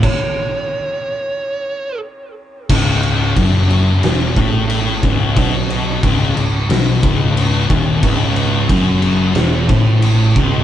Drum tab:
CC |x-------|xxxxxxxx|xxxxxxxx|xxxxxxxx|
SD |--------|----o---|----o---|----o---|
BD |o-------|o-o--o-o|o-o--o-o|o-o--o-o|